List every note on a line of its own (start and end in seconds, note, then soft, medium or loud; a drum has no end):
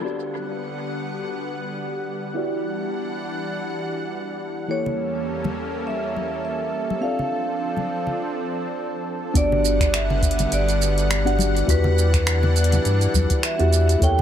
0.01 2.34 D3 medium
0.01 4.65 G3 medium
0.01 2.32 B3 medium
0.01 2.34 B3 medium
0.01 2.33 D4 medium
0.01 2.33 F#4 medium
0.01 2.33 G4 medium
0.01 2.34 D5 medium
0.01 2.34 F#5 medium
2.34 4.67 E3 medium
2.34 4.65 B3 medium
2.34 4.67 D4 medium
2.34 4.65 E4 medium
2.34 4.66 F#4 medium
2.34 4.66 G4 medium
2.34 4.67 D5 medium
2.34 4.67 F#5 medium
4.68 7.00 E2 medium
4.68 6.99 E3 medium
4.68 7.00 G3 medium
4.68 6.99 A#3 medium
4.68 7.00 A#3 medium
4.68 7.00 C#4 medium
4.68 6.99 E4 medium
4.68 6.99 G4 medium
4.68 7.00 A4 medium
4.68 9.32 A4 medium
4.68 7.00 C#5 medium
4.68 5.54 C#5 loud
4.86 low conga medium
5.44 high conga medium
5.44 low conga medium
5.87 6.44 E5 medium
6.16 high conga medium
6.45 7.05 E5 medium
6.90 high conga medium
7.01 9.34 F3 medium
7.01 8.18 C4 medium
7.01 9.33 C4 medium
7.01 8.18 D4 medium
7.01 9.34 D4 medium
7.01 8.19 F4 medium
7.01 8.19 A4 medium
7.01 8.20 D5 medium
7.01 8.15 F5 medium
7.19 low conga medium
7.77 high conga medium
7.77 low conga medium
8.07 low conga medium
9.34 10.46 G1 medium
9.34 11.66 D3 medium
9.34 13.97 G3 medium
9.34 11.06 B3 medium
9.34 11.66 B3 medium
9.34 11.07 D4 medium
9.34 11.07 F#4 medium
9.34 11.08 G4 medium
9.34 9.96 D5 medium
9.34 11.08 D5 medium
9.34 13.97 F#5 medium
9.34 kick loud
9.34 closed hi-hat medium
9.34 shaker soft
9.52 low conga medium
9.65 shaker medium
9.80 finger snap soft
9.80 kick loud
9.80 closed hi-hat medium
9.80 shaker soft
9.94 10.54 E5 medium
9.94 finger snap loud
9.94 closed hi-hat medium
9.94 shaker soft
10.10 low conga medium
10.22 kick loud
10.22 closed hi-hat soft
10.22 shaker medium
10.31 closed hi-hat medium
10.39 closed hi-hat soft
10.39 high conga medium
10.39 low conga medium
10.39 shaker soft
10.52 11.63 G1 medium
10.52 11.73 D5 medium
10.52 closed hi-hat medium
10.52 shaker soft
10.69 closed hi-hat soft
10.69 shaker soft
10.82 shaker medium
10.98 closed hi-hat soft
10.98 shaker soft
11.11 finger snap loud
11.11 closed hi-hat medium
11.11 shaker soft
11.25 11.65 B3 medium
11.25 11.65 D4 medium
11.25 11.65 F#4 medium
11.25 11.65 G4 medium
11.25 11.65 F#5 medium
11.25 closed hi-hat soft
11.39 closed hi-hat soft
11.39 high conga medium
11.39 shaker medium
11.57 closed hi-hat soft
11.57 shaker soft
11.66 12.79 E2 medium
11.66 13.99 E3 medium
11.66 13.39 B3 medium
11.66 13.99 D4 medium
11.66 13.39 E4 medium
11.66 13.40 F#4 medium
11.66 13.40 G4 medium
11.66 13.41 D5 medium
11.66 kick loud
11.66 closed hi-hat medium
11.66 shaker soft
11.70 13.49 B4 medium
11.84 low conga medium
11.98 shaker medium
12.14 finger snap soft
12.14 kick loud
12.14 closed hi-hat medium
12.14 shaker soft
12.27 finger snap loud
12.27 closed hi-hat medium
12.27 shaker soft
12.43 low conga medium
12.56 closed hi-hat soft
12.56 shaker medium
12.64 closed hi-hat medium
12.72 closed hi-hat soft
12.72 high conga medium
12.72 low conga medium
12.72 shaker soft
12.85 13.07 G2 loud
12.85 closed hi-hat medium
12.85 shaker soft
13.01 closed hi-hat soft
13.01 shaker soft
13.14 13.26 E2 medium
13.14 kick medium
13.14 high conga medium
13.14 shaker medium
13.30 kick loud
13.30 closed hi-hat soft
13.30 shaker soft
13.43 14.04 E5 loud
13.43 finger snap loud
13.43 closed hi-hat medium
13.43 shaker soft
13.59 13.96 E2 loud
13.59 13.98 B3 medium
13.59 13.98 E4 medium
13.59 13.98 F#4 medium
13.59 13.99 G4 medium
13.59 13.99 F#5 medium
13.59 closed hi-hat soft
13.72 closed hi-hat soft
13.72 shaker medium
13.89 closed hi-hat soft
13.89 shaker soft
13.99 14.22 E2 medium
13.99 14.22 C#3 medium
13.99 14.22 A#3 medium
13.99 14.22 E4 medium
13.99 14.22 G4 medium
13.99 14.22 A4 medium
13.99 14.22 C#5 medium
13.99 kick loud
13.99 closed hi-hat medium
13.99 shaker soft
14.04 14.22 G5 loud
14.19 low conga medium